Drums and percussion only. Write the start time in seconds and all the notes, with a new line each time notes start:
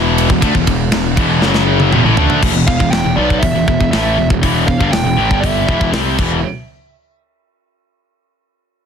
0.18 ride
0.30 kick
0.42 kick, ride
0.55 kick
0.67 kick, ride
0.92 snare, ride
1.17 kick, ride
1.42 snare
1.54 snare
1.80 high tom
1.93 mid tom
2.17 floor tom
2.30 floor tom
2.43 kick, crash
2.68 kick
2.80 kick
2.93 snare, open hi-hat
3.30 kick
3.43 kick, open hi-hat
3.68 kick
3.81 kick
3.93 snare, open hi-hat
4.30 kick
4.43 kick, open hi-hat
4.68 kick
4.81 kick
4.93 snare, open hi-hat
5.31 kick
5.44 kick, open hi-hat
5.69 kick
5.81 kick
5.94 snare, open hi-hat
6.19 kick, crash